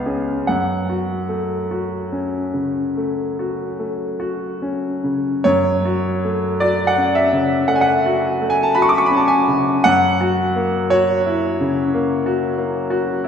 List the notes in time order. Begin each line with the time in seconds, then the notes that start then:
Already playing: C#2 B3 F5
0.06 C#4 G#4
0.47 F#2 F#5
0.90 F#4
1.29 A3
1.71 F#4
2.12 C#4
2.54 C#3
2.97 A3
3.39 F#4
3.79 A3
4.20 F#4
4.62 C#4
5.04 C#3
5.44 F#2 C#5
5.85 F#4
6.25 A3
6.60 F#4 D5
6.87 F#5
6.98 C#4
7.15 E5
7.33 C#3
7.68 A3 F#5
7.75 G#5
7.81 F#5
8.06 F#4
8.41 A3
8.50 G#5
8.63 A5
8.75 F#4 B5
8.82 C#6
8.89 D6
8.98 C#6
9.06 B5
9.11 C#4
9.17 A5
9.28 G#5
9.48 C#3
9.84 F#2 F#5
10.21 F#4
10.56 A#3
10.90 F#4 C#5
11.26 E4
11.61 C#3
11.94 A#3
12.26 F#4
12.58 A#3
12.90 F#4
13.24 E4